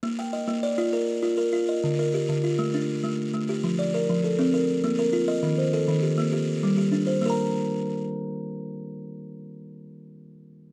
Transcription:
X:1
M:12/8
L:1/8
Q:3/8=134
K:Bb
V:1 name="Kalimba"
z g e2 d2 B3 B2 e- | e B G2 F2 D3 z2 G- | G d B2 A2 B3 B2 e- | e c A2 G2 G3 G2 c- |
c z8 z3 | z12 |]
V:2 name="Kalimba"
B,2 z B,2 F2 z F2 F2 | D,2 z D,2 A,2 z A,2 A,2 | F,2 z F,2 C z2 B,2 F2 | E,2 z E,2 B, z2 G,2 D2 |
[B,Bb]12- | [B,Bb]12 |]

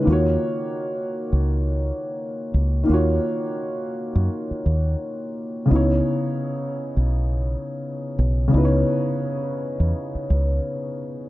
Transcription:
X:1
M:4/4
L:1/16
Q:"Swing 16ths" 1/4=85
K:C#dor
V:1 name="Felt piano"
[D,A,^EFc]16 | [D,A,^EFc]16 | [C,B,DEc]16 | [C,B,DEBc]16 |]
V:2 name="Fingered electric bass" clef=bass
D,,2 z4 z C,,4 z3 C,,2 | D,,2 z4 z F,, z2 D,,2 z4 | C,,2 z4 z B,,,4 z3 B,,,2 | C,,2 z4 z E,, z2 C,,2 z4 |]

